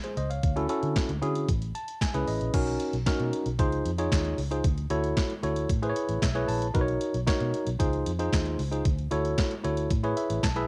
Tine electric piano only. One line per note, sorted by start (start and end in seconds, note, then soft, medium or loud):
0.04 0.17 G#4 medium
0.04 0.16 C5 medium
0.17 0.30 C5 medium
0.17 0.30 D#5 medium
0.30 0.55 C#5 medium
0.30 0.55 F5 medium
0.56 0.67 C#4 loud
0.56 0.67 E4 medium
0.56 0.67 F#4 medium
0.56 0.67 A4 loud
0.69 1.11 C#4 medium
0.69 1.11 E4 medium
0.69 1.11 F#4 medium
0.69 1.11 A4 loud
1.22 1.48 C#4 loud
1.22 1.48 E4 medium
1.22 1.48 F#4 medium
1.22 1.49 G#4 loud
1.75 1.99 A5 medium
2.01 2.26 G#5 medium
2.14 2.52 C#4 medium
2.14 2.54 E4 medium
2.14 2.54 G#4 medium
2.14 2.54 B4 loud
2.28 2.52 D#5 medium
2.54 2.95 C#4 medium
2.54 2.95 D#4 medium
2.54 2.95 F#4 medium
2.54 2.95 A#4 loud
3.06 3.48 C#4 medium
3.06 3.48 D#4 medium
3.06 3.48 F#4 medium
3.06 3.48 A#4 loud
3.59 3.90 D#4 medium
3.59 3.90 F4 medium
3.59 3.90 G#4 medium
3.59 3.90 C5 loud
3.98 4.40 D#4 medium
3.98 4.40 F4 medium
3.98 4.40 G#4 medium
3.98 4.40 C#5 loud
4.51 4.64 D#4 medium
4.51 4.64 F4 medium
4.51 4.64 G#4 medium
4.51 4.64 C5 medium
4.90 5.32 E4 loud
4.90 5.32 F#4 medium
4.90 5.32 A4 medium
4.90 5.32 C#5 loud
5.43 5.69 E4 medium
5.43 5.69 F#4 medium
5.43 5.70 A4 medium
5.43 5.70 C#5 loud
5.82 6.24 E4 loud
5.82 6.24 G#4 medium
5.82 6.24 B4 medium
5.82 5.89 C5 medium
5.89 6.27 C#5 loud
6.22 6.47 E5 medium
6.35 6.66 E4 loud
6.35 6.66 G#4 medium
6.35 6.66 B4 medium
6.35 6.66 C#5 loud
6.48 6.73 A5 medium
6.74 7.16 D#4 loud
6.74 7.16 F#4 medium
6.74 7.16 A#4 medium
6.74 6.81 B4 medium
6.81 7.19 C#5 loud
7.27 7.68 D#4 loud
7.27 7.69 F#4 medium
7.27 7.69 A#4 medium
7.27 7.69 C#5 loud
7.79 8.11 D#4 medium
7.79 8.11 F4 medium
7.79 8.11 G#4 medium
7.79 8.11 C5 loud
8.19 8.61 D#4 medium
8.19 8.61 F4 medium
8.19 8.61 G#4 medium
8.19 8.61 C5 loud
8.71 8.85 D#4 medium
8.71 8.85 F4 medium
8.71 8.85 G#4 medium
8.71 8.85 C5 medium
9.11 9.53 E4 medium
9.11 9.53 F#4 medium
9.11 9.53 A4 medium
9.11 9.53 C#5 loud
9.64 9.90 E4 medium
9.64 9.91 F#4 medium
9.64 9.91 A4 medium
9.64 9.91 C#5 loud
10.03 10.45 E4 loud
10.03 10.45 G#4 medium
10.03 10.45 B4 medium
10.03 10.45 C#5 loud
10.17 10.41 E5 medium
10.43 10.67 A5 medium
10.56 10.67 E4 loud
10.56 10.67 G#4 medium
10.56 10.67 B4 medium
10.56 10.67 E5 loud